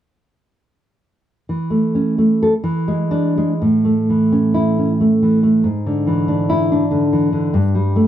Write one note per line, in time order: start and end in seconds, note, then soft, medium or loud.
1.49 2.49 E3 soft
1.70 2.17 A3 soft
1.95 2.52 C#4 soft
2.18 2.52 A3 soft
2.43 2.53 A4 medium
2.64 3.59 E3 medium
2.88 3.36 G#3 soft
3.11 3.52 D4 medium
3.38 3.62 G#3 soft
3.62 5.61 A2 medium
3.85 4.87 A3 soft
4.09 5.10 E3 soft
4.32 4.77 C#4 soft
4.54 4.90 E4 medium
4.78 5.66 C#4 soft
5.00 5.42 A3 soft
5.22 5.66 E3 soft
5.43 5.65 A3 soft
5.64 7.50 G#2 medium
5.86 6.81 D3 soft
6.07 7.02 E3 soft
6.28 6.70 D4 medium
6.50 6.84 E4 medium
6.72 7.55 D4 medium
6.91 7.32 D3 medium
7.13 7.54 E3 soft
7.33 7.54 D3 soft
7.54 8.07 G2 medium
7.75 8.07 G3 medium
7.96 8.07 A3 medium